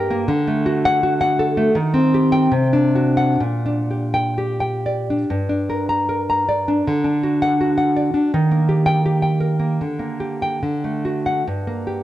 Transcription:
Already playing: G2 G4 A#4 G5
0.10 A#3
0.28 D3
0.47 A3
0.66 F#4
0.85 F#5
1.03 F#4
1.21 F#5
1.39 A4
1.57 A3
1.75 D#3
1.94 C4
2.14 G4
2.32 G5
2.52 C3
2.73 D4
2.95 F#4
3.17 F#5
3.40 A#2
3.66 D4
3.91 G4
4.14 G5
4.38 G4
4.60 G5
4.86 D5
5.10 D4
5.30 G2
5.49 D4
5.70 A#4
5.89 A#5
6.09 A#4
6.30 A#5
6.49 D5
6.68 D4
6.87 D3
7.04 D4
7.23 F#4
7.42 F#5
7.61 F#4
7.78 F#5
7.96 D5
8.14 D4
8.34 D#3
8.51 A#3
8.69 G4
8.86 G5
9.06 G4
9.22 G5
9.40 A#4
9.60 A#3
9.81 D3
9.99 A#3
10.20 G4
10.42 G5
10.63 D3
10.84 A3
11.05 F#4
11.26 F#5
11.47 G2
11.67 A#3
11.87 G4

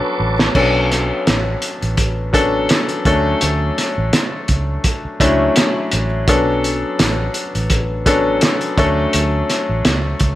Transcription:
Already playing: F#3 B3 C#4 D4 A4 B4 F#5 A5 C#6 D6
0.20 A1
0.39 snare
0.55 B1 F#3 B3 C#4 D4 A4, kick, crash
0.92 snare, closed hi-hat
1.27 A1, snare, closed hi-hat
1.62 closed hi-hat
1.82 A1, closed hi-hat
1.97 kick, closed hi-hat
2.33 F#3 B3 C#4 D4 A4, kick, closed hi-hat
2.69 snare, closed hi-hat
2.89 closed hi-hat
3.05 D2 F#3 A3 C#4 D4 A4, kick, closed hi-hat
3.41 D2, closed hi-hat
3.78 snare, closed hi-hat
3.98 A1
4.13 snare, closed hi-hat
4.48 C#2, kick, closed hi-hat
4.84 kick, closed hi-hat
5.05 muted fingered electric bass stroke
5.20 C#2 F#3 A3 C#4 D4 E4, kick, closed hi-hat
5.56 snare, closed hi-hat
5.91 A1, closed hi-hat
6.28 B1 F#3 B3 C#4 D4 A4, kick, closed hi-hat
6.64 closed hi-hat
6.99 A1, snare, closed hi-hat
7.34 closed hi-hat
7.55 A1, closed hi-hat
7.70 kick, closed hi-hat
8.06 F#3 B3 C#4 D4 A4, kick, closed hi-hat
8.41 snare, closed hi-hat
8.61 closed hi-hat
8.78 D2 F#3 A3 C#4 D4 A4, kick, closed hi-hat
9.13 D2, closed hi-hat
9.50 snare, closed hi-hat
9.69 A1
9.85 C#2, snare, closed hi-hat
10.20 C#2, kick, closed hi-hat

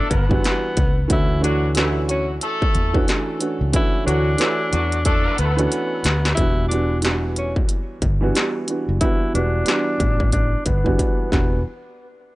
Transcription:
Already playing: E3 G3 A3 B3 D4 F#4 A4
0.10 G1 B3, kick, closed hi-hat
0.29 E3 G3 B3 D4 F#4, kick
0.44 snare, closed hi-hat
0.77 C#2, kick, closed hi-hat
1.08 D2 E3 A3 C#4 D4 F#4, kick, closed hi-hat
1.12 E4
1.40 E3 F#3 A3 D4 F#4 C#5, closed hi-hat
1.75 E3 A3 C#4 D4 E4 F#4, snare, closed hi-hat
2.08 F#3 C#4 F#4, closed hi-hat
2.41 A3 A4, closed hi-hat
2.62 kick
2.75 E2, closed hi-hat
2.93 E3 A3 C#4 D4 F#4, kick
3.06 E3 A3 C#4 D4 F#4, snare, closed hi-hat
3.39 E3 A3 C#4 D4 F#4, closed hi-hat
3.61 C#2
3.73 E3 A3 C#4 D4 E4 F#4, kick, closed hi-hat
4.05 D2 E3 F#3 A3 D4 F#4 C#5, closed hi-hat
4.38 E3 A3 D4 E4 F#4 C#5, snare, closed hi-hat
4.73 E2 F#3 F#4, closed hi-hat
4.92 closed hi-hat
5.05 A3 D4 A4, kick, closed hi-hat
5.38 D2 B3, closed hi-hat
5.57 E3 A3 C#4 D4 F#4, closed hi-hat
5.72 closed hi-hat
6.04 D2, snare, closed hi-hat
6.25 snare
6.35 E1 E3 G3 E4, kick, closed hi-hat
6.39 B3 D4 F#4
6.68 E3 G3 B3 D4, closed hi-hat
6.73 F#4
7.02 E3 G3 B3 D4 F#4, snare, closed hi-hat
7.36 C#4, closed hi-hat
7.56 kick
7.69 closed hi-hat
8.02 G1, kick, closed hi-hat
8.21 E3 G3 B3 D4 F#4
8.34 E3 G3 B3 D4 F#4, snare, closed hi-hat
8.67 E3 G3 B3 D4 F#4, closed hi-hat
8.89 F#1
9.01 E3 G3 B3 D4 E4 F#4, kick, closed hi-hat
9.34 E1 E3 G3 B3 D4 F#4, closed hi-hat
9.65 E3 G3 B3 D4 F#4, snare, closed hi-hat
10.00 A1, kick, closed hi-hat
10.20 kick
10.32 D4, kick, closed hi-hat
10.65 G1 B3, kick, closed hi-hat
10.84 E3 G3 B3 D4 F#4, kick
10.99 kick, closed hi-hat
11.32 E1 E3 G3 B3 D4 F#4, kick, snare

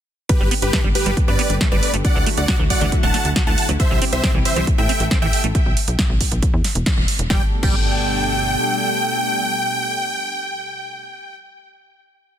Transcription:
0.29 D3 G3 A3 B3 G4 B4, kick, closed hi-hat
0.40 G1 G3
0.51 B3, open hi-hat
0.62 G1 G4 B4, closed hi-hat
0.73 A3, kick, snare, closed hi-hat
0.84 G1 G3
0.95 G4 B4, open hi-hat
1.06 G1 G3, closed hi-hat
1.17 kick, closed hi-hat
1.28 G2 B3 B4 D5
1.39 B3, open hi-hat
1.50 G1, closed hi-hat
1.61 A3, kick, snare, closed hi-hat
1.72 G1 G3 B4 D5
1.83 open hi-hat
1.94 G1 A3, closed hi-hat
2.05 D3 F#3 E4 F#4 D5 F#5, kick, closed hi-hat
2.15 D2 E3
2.26 A3, open hi-hat
2.37 D2 D5 F#5, closed hi-hat
2.48 F#4, kick, snare, closed hi-hat
2.59 D2 E3
2.70 D5 F#5, kick, open hi-hat
2.81 D2 E3, closed hi-hat
2.92 kick, closed hi-hat
3.03 D1 A3 F#5 A5
3.14 A3, snare, open hi-hat
3.25 D2, closed hi-hat
3.36 F#4, kick, snare, closed hi-hat
3.47 D2 E3 F#5 A5
3.58 open hi-hat
3.69 D2 F#3, closed hi-hat
3.80 C3 E3 G3 G4 C5 E5, kick, closed hi-hat
3.91 C2 E3
4.02 C4, open hi-hat
4.12 C2 C5 E5, closed hi-hat
4.23 C4, kick, snare, closed hi-hat
4.34 C2 E3
4.45 C5 E5, open hi-hat
4.56 C2 E3, closed hi-hat
4.67 A3 E4 A4, kick, closed hi-hat
4.78 A2 C4 E5 G5
4.89 C4, open hi-hat
5.00 A1, closed hi-hat
5.11 C4, kick, snare, closed hi-hat
5.22 A1 E3 E5 G5
5.33 open hi-hat
5.44 A1 A3, closed hi-hat
5.55 kick, closed hi-hat
5.66 B1
5.77 open hi-hat
5.88 B1, closed hi-hat
5.99 kick, snare, closed hi-hat
6.10 B1
6.21 kick, open hi-hat
6.32 B1, closed hi-hat
6.42 kick, closed hi-hat
6.53 E2
6.64 snare, open hi-hat
6.75 E1, closed hi-hat
6.86 kick, snare, closed hi-hat
6.97 E1
7.08 open hi-hat
7.19 E1, closed hi-hat
7.30 G1 B2 G3 A3 D4 A4 G5, kick, snare
7.63 G1 G3 G5, kick, crash

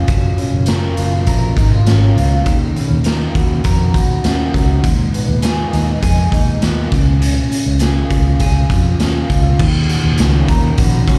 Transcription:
Already playing: C#4 F4 G#4
0.08 F#1 F#3, kick, closed hi-hat
0.38 C#4, closed hi-hat
0.52 F#1
0.66 A#4, snare, closed hi-hat
0.97 F#1 F4, closed hi-hat
1.27 A#1 A#4, kick, closed hi-hat
1.57 G#1 D#4, kick, closed hi-hat
1.72 F4
1.87 G#1 C#4, snare, closed hi-hat
2.16 C#2 F4, closed hi-hat
2.46 D#2 D#3, kick, closed hi-hat
2.76 C#4, closed hi-hat
2.91 D#2
3.04 A#4, snare, closed hi-hat
3.35 D#2 F#4, kick, closed hi-hat
3.64 F2 A#4, kick, closed hi-hat
3.94 D#2 F#4, kick, closed hi-hat
4.24 D#2 C#4, snare, closed hi-hat
4.54 C#2 F#4, kick, snare, closed hi-hat
4.83 D#2 G#2, kick, closed hi-hat
5.13 B3, closed hi-hat
5.28 D#2
5.42 G#4, snare, closed hi-hat
5.73 D#2 D#4, closed hi-hat
6.02 F2 G#4, kick, closed hi-hat
6.32 D#2 D#4, kick, closed hi-hat
6.62 D#2 B3, snare, closed hi-hat
6.92 C#2 C#3, kick, snare, closed hi-hat
7.21 C#3, closed hi-hat
7.51 C#4, closed hi-hat
7.66 C#2
7.79 G#4, snare, closed hi-hat
8.10 C#2 F4, kick, closed hi-hat
8.40 C#2 G#4, kick, closed hi-hat
8.70 F2 F4, kick, closed hi-hat
9.00 D#2 C#4, snare, closed hi-hat
9.30 C#2 F4, kick, closed hi-hat
9.59 D#2 D#3, kick, crash
9.89 F#4, closed hi-hat
10.04 D#2
10.18 C#2 C#4, snare, closed hi-hat
10.48 D#2 A#4, kick, closed hi-hat
10.78 A#1 F#4, kick, closed hi-hat
11.07 C#2 C#4, kick, closed hi-hat

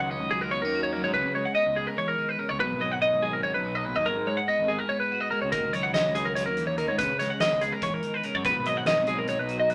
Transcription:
Already playing: C#2 D#3 F#3
0.00 F#5
0.10 C#4 D#5
0.20 C#2
0.31 F#3 G#4
0.41 A#4
0.51 B3 C#5
0.62 D#2 C#4 A#4
0.75 F#4
0.83 C#5
0.93 F#3 A#4
1.04 G#2 C#5
1.13 C#2 C#3 B4
1.24 C#3
1.35 G#3 C#5
1.45 F#5
1.55 B3 D#5
1.66 C#2
1.76 G#3 G#4
1.87 A#4
1.98 E3 C#5
2.08 A#4
2.18 D#3
2.29 B4
2.39 C#3 A#4
2.49 C#2 C#5
2.60 B1 B2 B4
2.71 G#1
2.80 F#3 D#5
2.92 F#5
3.02 D#4 D#5
3.12 G#1
3.22 F#3 G#4
3.33 A#4
3.43 C#3 C#5
3.54 B1 B4
3.64 B2
3.75 D#5
3.85 A#2 B4
3.96 D#2 D#5
4.06 G#1 G#2 A#4
4.17 G#2
4.27 G#3 C#5
4.37 F#5
4.48 B3 D#5
4.59 G#1
4.68 G#3 G#4
4.79 A#4
4.89 B3 C#5
5.00 B4
5.12 F#4
5.20 D#5
5.31 G#3 A#4
5.42 C#2 C#5
5.52 D#2 D#3 A#4, kick, closed hi-hat
5.64 C#2
5.73 F#3 C#5, closed hi-hat
5.83 F#5
5.94 C#4 D#5, snare, closed hi-hat
6.05 C#2
6.15 F#3 G#4, closed hi-hat
6.25 A#4
6.35 F#3 C#5, closed hi-hat
6.46 D#2 A#4
6.57 E3, closed hi-hat
6.67 C#5
6.78 D#3 A#4, closed hi-hat
6.88 G#2 C#5
6.98 C#2 C#3 B4, kick, closed hi-hat
7.09 C#3
7.19 G#3 C#5, snare, closed hi-hat
7.30 F#5
7.40 B3 D#5, snare, closed hi-hat
7.51 C#2
7.61 G#3 G#4, closed hi-hat
7.73 A#4
7.82 E3 C#5, kick, closed hi-hat
7.94 A#4
8.03 D#3, closed hi-hat
8.14 B4
8.23 C#3 A#4, closed hi-hat
8.35 F#2 C#5
8.44 B1 B2 B4, kick, closed hi-hat
8.55 G#1
8.65 F#3 D#5, closed hi-hat
8.77 F#5
8.86 D#4 D#5, snare, closed hi-hat
8.97 G#1
9.07 F#3 G#4, closed hi-hat
9.18 A#4
9.27 D#4 C#5, closed hi-hat
9.38 B1 B4
9.49 F#4, closed hi-hat
9.60 D#5
9.70 F#3 B4, closed hi-hat

